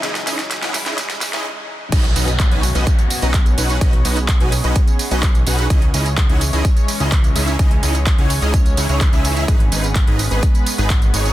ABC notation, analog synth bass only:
X:1
M:4/4
L:1/16
Q:1/4=127
K:B
V:1 name="Analog synth bass" clef=bass
C,,2 C,,3 C,,2 C,, z3 C,, z4 | B,,,2 B,,,3 B,,,2 B,,, z3 B,,,3 B,,,2 | z2 B,,,3 B,,,2 B,,, z3 B,,,3 B,,,2 | z2 C,,3 C,,2 C,, z3 C,,3 C,,2 |
C,,2 C,,3 C,,2 C,,3 C,, C,,2 C,,3 | z2 G,,,3 G,,,2 G,,, z3 G,,,3 G,,,2 |]